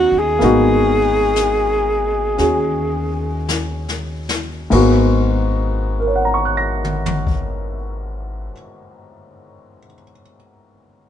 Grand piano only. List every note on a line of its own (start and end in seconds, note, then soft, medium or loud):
0.00 0.37 A#3 medium
0.00 0.39 B3 soft
0.00 0.42 C#4 soft
0.00 0.40 D#4 soft
0.00 0.42 F#4 medium
0.39 4.70 A#3 soft
0.39 4.71 B3 soft
0.39 4.72 D#4 soft
0.44 2.37 F#4 medium
2.37 4.71 C#4 soft
2.37 4.71 F#4 soft
2.37 4.73 G#4 soft
4.70 8.51 G#2 medium
4.70 8.52 G#3 soft
4.70 8.52 A#3 soft
4.70 8.53 B3 medium
4.70 8.54 F#4 medium
6.00 9.77 A#4 soft
6.07 9.84 C#5 soft
6.16 9.92 F#5 soft
6.25 10.02 A#5 soft
6.34 10.11 C#6 soft
6.45 10.22 F#6 soft
6.57 10.34 A#6 soft